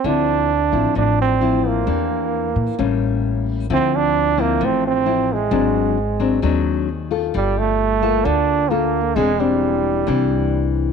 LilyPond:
<<
  \new Staff \with { instrumentName = "Nylon-string guitar" } { \time 4/4 \key d \minor \tempo 4 = 132 << { <f c' e'>4 r8 <f c' e'>4. <f c' e'>4 | <bes d' g'>4. r8 <g bes cis'>2 | <f c' e'>4. <f c' e'>4. <f c' e'>8 r8 | <fis bis d'>4 r8 <fis bis d'>8 <fis bis d'>4 r8 <f' a'>8~ |
<f' a'>4. <bes f' a'>4. <bes f' a'>8 r8 | <bis d' gis'>8 <bis d'>4. <bis d'>2 | } \\ { d2 a,2 | e2 a,2 | d2 a,2 | gis,2 dis2 |
g2 d2 | e2 e2 | } >> }
  \new Staff \with { instrumentName = "Trombone" } { \time 4/4 \key d \minor d'2 d'8 c'4 bes8~ | bes2~ bes8 r4. | c'8 d'4 bes8 c'8 c'4 gis8~ | gis2~ gis8 r4. |
g8 a4. d'4 bes4 | gis8 g2. r8 | }
  \new Staff \with { instrumentName = "Upright bass" } { \clef bass \time 4/4 \key d \minor d,4. a,,16 r16 a,,2 | e,4. bes,16 r16 a,,2 | d,2 a,,2 | gis,,2 dis,2 |
g,,2 d,2 | e,,2 bis,,2 | }
>>